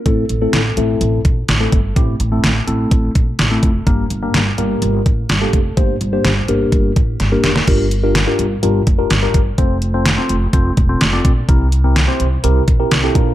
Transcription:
<<
  \new Staff \with { instrumentName = "Tine electric piano" } { \time 4/4 \key g \dorian \tempo 4 = 126 <a c' e' a'>8 r16 <a c' e' a'>8 r16 <a c' e' a'>4 r8. <a c' e' a'>8 r16 | <a c' e' g'>8 r16 <a c' e' a'>8 r16 <a c' e' a'>4 r8. <a c' e' a'>8 r16 | <bes d' g' bes'>8 r16 <bes d' g' bes'>8 r16 <bes d' g' bes'>4 r8. <bes d' g' a'>8 r16 | <bes d' g' c''>8 r16 <bes d' g' c''>8 r16 <bes d' g' bes'>4 r8. <bes d' g' bes'>8 r16 |
<d' f' g' bes'>8 r16 <d' f' g' bes'>16 r16 <d' f' g' bes'>8 r16 <d' f' g' bes'>8 r16 <d' f' g' bes'>16 r16 <d' f' g' bes'>8 r16 | <c' f' a' c''>8 r16 <c' f' a' c''>16 r16 <c' f' a' c''>8 r16 <c' f' a' c''>8 r16 <c' f' a' c''>16 r16 <c' f' a' d''>8 r16 | <c' e' g' bes'>8 r16 <c' e' g' bes'>16 r16 <c' e' g' c''>8 r16 <c' e' g' bes'>8 r16 <c' e' g' bes'>16 r16 <c' e' g' a'>16 <bes d' f' bes'>8 | }
  \new Staff \with { instrumentName = "Upright bass" } { \clef bass \time 4/4 \key g \dorian a,,8 a,,8 a,,8 a,,8 a,,8 bes,,8 a,,8 g,,8 | a,,8 a,,8 a,,8 a,,8 a,,8 bes,,8 a,,8 f,,8 | g,,8 g,,8 g,,8 g,,8 g,,8 a,,8 g,,8 f,,8 | g,,8 g,,8 g,,8 g,,8 g,,8 a,,8 g,,8 f,,8 |
g,,4~ g,,16 r16 g,,8 g,,8 f,,8 g,,8 g,,8 | f,,4~ f,,16 r16 f,,8 f,,8 e,,8 f,,8 bes,,8 | c,4~ c,16 r16 c,8 c,8 bes,,8 c,8 bes,,8 | }
  \new DrumStaff \with { instrumentName = "Drums" } \drummode { \time 4/4 <hh bd>8 hh8 <hh sn>8 hh8 hh8 <hh bd>8 <hh sn>8 <hh bd>8 | <hh bd>8 hh8 <hh sn>8 hh8 <hh bd>8 <hh bd>8 <hh sn>8 <hh bd>8 | <hh bd>8 hh8 <hh sn>8 hh8 hh8 <hh bd>8 <hh sn>8 <hh bd>8 | <hh bd>8 hh8 <hh sn>8 hh8 <hh bd>8 <hh bd>8 <hh sn>8 <hh sn>16 sn16 |
<cymc hh bd>8 hh8 <hh sn>8 hh8 hh8 <hh bd>8 <hh sn>8 <hh bd>8 | <hh bd>8 hh8 <hh sn>8 hh8 <hh bd>8 <hh bd>8 <hh sn>8 <hh bd>8 | <hh bd>8 hh8 <hh sn>8 hh8 hh8 <hh bd>8 <hh sn>8 <hh bd>8 | }
>>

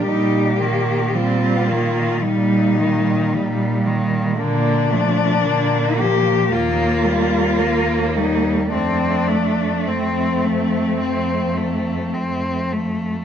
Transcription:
<<
  \new Staff \with { instrumentName = "Cello" } { \time 4/4 \key ees \lydian \tempo 4 = 55 g'4 f'4 ees'4. r8 | d'4. g'8 f'4. ees'8 | d'4 c'2 r4 | }
  \new Staff \with { instrumentName = "Cello" } { \time 4/4 \key ees \lydian ees'8 bes8 c'8 bes8 g4 g4 | bes8 a8 bes4 bes2 | a2.~ a8 r8 | }
  \new Staff \with { instrumentName = "Cello" } { \clef bass \time 4/4 \key ees \lydian g8 ees8 g8 ees8 g8 ees8 g8 ees8 | d8 f8 d8 f8 bes8 g8 bes8 g8 | c'8 a8 c'8 a8 c'8 a8 c'8 a8 | }
  \new Staff \with { instrumentName = "Cello" } { \clef bass \time 4/4 \key ees \lydian bes,4 bes,4 bes,4 bes,4 | bes,4 bes,4 ees,4 ees,4 | f,4 f,4 f,4 f,4 | }
>>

